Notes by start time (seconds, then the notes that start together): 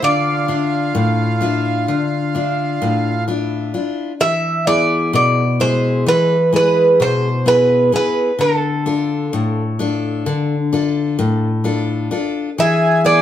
0.02 D3 F4 D5
0.48 D4 F4 E5
0.95 A2
1.41 D4 F4 E5
1.88 D3
2.35 D4 F4 E5
2.82 A2
3.28 D4 E4 F4
3.74 D4 E4 F4
4.21 E3 E5
4.67 B3 E4 G#4 D5
5.13 B2 D5
5.60 G#3 E4 G#4 C5
6.06 E3 B4
6.53 G#3 E4 G#4 B4
7.00 B2 C5
7.46 B3 E4 G#4 B4
7.92 B3 E4 G#4 B4
8.39 D3 A4
8.86 D4 F4 A4
9.33 A2
9.79 D4 F4 A4
10.26 D3
10.73 D4 F4 A4
11.19 A2
11.64 D4 F4 A4
12.11 D4 F4 A4
12.58 E3 G#4 E5
13.04 B3 E4 G#4 D5